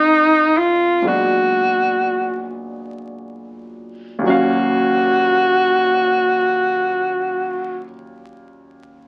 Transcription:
Already playing: grand piano F2 F3 G#3 B3 D#4, alto saxophone D#4
0.58 alto saxophone F4
1.02 grand piano A#2 F#3 G#3 B3 D4
1.07 grand piano F#4, alto saxophone F#4
4.19 grand piano D#2 A#2
4.24 grand piano F#3 C#4, alto saxophone F#4
4.30 grand piano F5

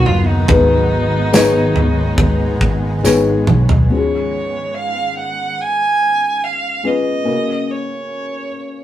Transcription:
Already playing: ambient pad D#3 F#3 B3, felt piano F#3 B3 D#4 F#4 A#4
0.06 fretless electric bass F#1, violin F4, floor tom
0.26 violin D#4
0.48 fretless electric bass G#1, felt piano G#3 B3 D#4 G#4 B4, ambient pad G#3, kick, floor tom
1.32 felt piano G#3 B3 D#4 G#4 C#5, snare, tambourine
1.76 floor tom
2.18 kick, floor tom
2.61 fretless electric bass G#1, kick
3.03 fretless electric bass G#1, felt piano G#3 B3 D#4 G#4 C#5, snare, tambourine
3.47 fretless electric bass B1, mid tom
3.69 floor tom
3.90 felt piano G#2 F3 G#3 C#4 F#4, violin C#5
3.97 felt piano G#4
4.74 violin F5
5.18 violin F#5
5.61 violin G#5
6.44 violin F5
6.83 felt piano G#3 C#4 F4 B4, violin D#5
7.24 felt piano C#3 A#3 C#4 F#4 A#4
7.71 violin C#5

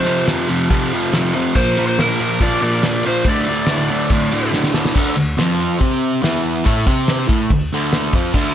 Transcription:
Already playing: electric slide guitar C5
0.05 distorted electric guitar F2 C3 F3, ride
0.27 distorted electric guitar F2 C3 F3, snare, ride
0.48 distorted electric guitar F2 C3 F3, ride
0.69 distorted electric guitar F2 C3 F3, kick, ride
0.91 distorted electric guitar F2 C3 F3, ride
1.13 distorted electric guitar F2 C3 F3, snare, ride
1.34 distorted electric guitar F2 C3 F3, ride
1.55 distorted electric guitar A#2 F3 A#3, electric slide guitar C5, kick, crash
1.77 distorted electric guitar A#2 F3 A#3, ride
1.88 electric slide guitar C5
1.99 distorted electric guitar A#2 F3 A#3, electric slide guitar A#4, snare, ride
2.20 distorted electric guitar A#2 F3 A#3, ride
2.40 distorted electric guitar A#2 F3 A#3, electric slide guitar D5, kick, ride
2.62 distorted electric guitar A#2 F3 A#3, electric slide guitar D5, ride
2.83 distorted electric guitar A#2 F3 A#3, snare, ride
3.03 distorted electric guitar A#2 F3 A#3, ride
3.07 electric slide guitar C5
3.24 distorted electric guitar D2 A2 D3, electric slide guitar D5, kick, ride
3.45 distorted electric guitar D2, ride
3.49 distorted electric guitar A2 D3
3.66 distorted electric guitar D2 A2 D3, snare, ride
3.88 distorted electric guitar D2 A2 D3, ride
4.10 distorted electric guitar D2 A2 D3, kick, ride
4.32 distorted electric guitar D2 A2 D3, ride
4.51 distorted electric guitar D2 A2 D3, snare
4.64 snare
4.73 distorted electric guitar D2 A2 D3, snare
4.85 snare
4.93 distorted electric guitar D2 D3, kick, crash
5.16 distorted electric guitar D2
5.37 distorted electric guitar F2 F3, snare, open hi-hat
5.80 distorted electric guitar C3 C4, kick, open hi-hat
6.22 distorted electric guitar E2 E3, snare, open hi-hat
6.65 distorted electric guitar A2 A3, kick, open hi-hat
6.87 distorted electric guitar C3 C4, kick
7.08 snare, open hi-hat
7.28 distorted electric guitar A2 A3, kick
7.50 distorted electric guitar D2, kick, open hi-hat
7.73 distorted electric guitar D2 D3
7.92 snare, open hi-hat
8.13 distorted electric guitar F2 F3, kick
8.34 distorted electric guitar D2 D3, kick, crash

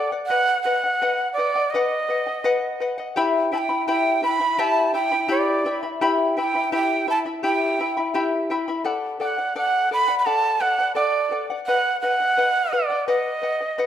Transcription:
Already playing: charango A4 D5 F#5, quena D5
0.12 charango D5 F#5
0.26 quena F#5
0.30 charango B4 D#5 F#5
0.63 charango B4 D#5, quena F#5
0.67 charango F#5
0.84 charango D#5 F#5
1.02 charango B4 D#5 F#5
1.33 quena D5
1.38 charango B4 D#5 F#5
1.56 charango D#5 F#5
1.70 charango B4, quena D#5
1.75 charango D#5 F#5
2.09 charango B4 D#5 F#5
2.27 charango D#5 F#5
2.44 charango B4 D#5 F#5
2.80 charango B4 D#5 F#5
2.98 charango D#5 F#5
3.16 charango E4 G4 E5 G5 B5
3.52 charango E4 E5 G5 B5, quena A5
3.58 quena G5
3.69 charango E4 E5 B5
3.88 charango E4 G4 E5 G5 B5, quena G5
4.22 charango E4 E5 G5 B5, quena B5
4.40 charango E4 E5 B5
4.58 charango E4 G4 E5 G5 B5, quena A5
4.94 charango E4 E5 G5 B5, quena G5
5.11 charango E4 E5 B5
5.28 charango E4 G4 E5 G5 B5, quena D5
5.65 charango E4 E5 G5 B5
5.83 charango E4 E5 B5
6.01 charango E4 G4 E5 G5 B5
6.37 charango E4 E5 G5 B5, quena G5
6.54 charango E4 E5 B5
6.72 charango E4 G4 E5 G5 B5, quena G5
7.07 charango E4 E5 G5 B5, quena A5
7.25 charango E4 E5 B5
7.43 charango E4 G4 E5 G5 B5, quena G5
7.79 charango E4 E5 G5 B5
7.97 charango E4 E5 B5
8.14 charango E4 G4 E5 G5 B5
8.50 charango E4 E5 G5 B5
8.68 charango E4 E5 B5
8.84 charango A4 D5 F#5
9.20 charango A4 D5 F#5, quena F#5
9.38 charango D5 F#5
9.56 charango A4 D5 F#5, quena F#5
9.91 charango A4 D5 F#5, quena B5
10.08 charango D5 F#5
10.19 quena B5
10.26 charango A4 D5 F#5, quena A5
10.61 charango A4 D5 F#5, quena F#5
10.79 charango D5 F#5
10.95 charango A4 D5 F#5, quena D5
11.31 charango A4 D5 F#5
11.50 charango D5 F#5
11.66 charango B4 D#5 F#5, quena F#5
12.01 charango B4 D#5 F#5, quena F#5
12.20 charango D#5 F#5
12.37 charango B4 D#5 F#5
12.73 charango B4 D#5 F#5, quena D5
12.90 charango D#5 F#5
13.08 charango B4 D#5 F#5, quena D#5
13.42 charango B4 D#5 F#5
13.61 charango D#5 F#5
13.78 charango B4 D#5 F#5

